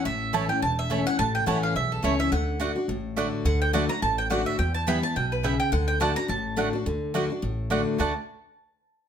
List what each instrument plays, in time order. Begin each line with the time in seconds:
0.05 upright bass A1, steel-string acoustic guitar A2, mandolin E5
0.33 steel-string acoustic guitar E3 A3 C#4 E4, mandolin A3 E4 C#5 A5
0.49 steel-string acoustic guitar C#4 E4, mandolin G5
0.62 upright bass E1, steel-string acoustic guitar E2, mandolin A5
0.79 mandolin E5
0.90 steel-string acoustic guitar E3 A3 C#4 E4, mandolin A3 E4 C#5 A5
1.06 steel-string acoustic guitar C#4 E4, mandolin F#5
1.19 upright bass A1, steel-string acoustic guitar A2, mandolin A5
1.35 mandolin G5
1.46 upright bass A1, steel-string acoustic guitar E3 A3 C#4 E4, mandolin A3 E4 C#5 F#5 A5
1.63 mandolin F5
1.75 upright bass B1, steel-string acoustic guitar E2, mandolin E5
1.92 mandolin A4
2.03 upright bass C#2, steel-string acoustic guitar E3 A3 C#4 E4, mandolin A3 E4 C#5 A5
2.19 steel-string acoustic guitar C#4 E4, mandolin E5
2.32 upright bass D2, steel-string acoustic guitar D3, mandolin F#5
2.60 steel-string acoustic guitar D3 A3 D4 F#4, mandolin A3 F#4 D5 F#5
2.76 steel-string acoustic guitar D4 F#4
2.88 upright bass A1, steel-string acoustic guitar A2
3.17 steel-string acoustic guitar D3 A3 D4 F#4, mandolin A3 F#4 D5 F#5
3.45 upright bass D2, steel-string acoustic guitar D3, mandolin F#5
3.62 mandolin G5
3.73 steel-string acoustic guitar D3 A3 D4 F#4, mandolin A3 F#4 D5 F#5 A5
3.89 steel-string acoustic guitar D4 F#4, mandolin A#5
4.02 upright bass A1, steel-string acoustic guitar A2, mandolin A5
4.18 mandolin G5
4.30 steel-string acoustic guitar D3 A3 D4 F#4, mandolin A3 F#4 D5 F#5
4.46 mandolin E5
4.59 steel-string acoustic guitar E2, upright bass E2, mandolin G5
4.74 mandolin A5
4.87 steel-string acoustic guitar E3 G3 B3 E4, mandolin B3 E4 B4 G5 B5
5.03 steel-string acoustic guitar B3 E4, mandolin A5
5.16 upright bass B1, steel-string acoustic guitar B2, mandolin G5
5.32 mandolin B4
5.43 steel-string acoustic guitar C#3, mandolin B3 E4 B4 E5 G5
5.60 mandolin G5
5.72 upright bass D2, steel-string acoustic guitar D3, mandolin F#5
5.88 mandolin G5
6.00 steel-string acoustic guitar D3 A3 D4 F#4, mandolin A3 F#4 D5 F#5 A5
6.16 steel-string acoustic guitar D4 F#4, mandolin A#5
6.28 upright bass A1, steel-string acoustic guitar A2, mandolin A5
6.56 steel-string acoustic guitar D3 A3 D4 F#4, mandolin A3 F#4 D5 F#5
6.73 steel-string acoustic guitar D4 F#4
6.86 upright bass D2, steel-string acoustic guitar D3
7.14 steel-string acoustic guitar D3 A3 D4 F#4, mandolin A3 F#4 D5 F#5
7.30 steel-string acoustic guitar D4 F#4
7.42 upright bass A1, steel-string acoustic guitar A2
7.70 steel-string acoustic guitar D3 A3 D4 F#4, mandolin A3 F#4 D5 F#5
7.98 upright bass D2, steel-string acoustic guitar D3 A3 D4 F#4, mandolin A3 F#4 D5 F#5 A5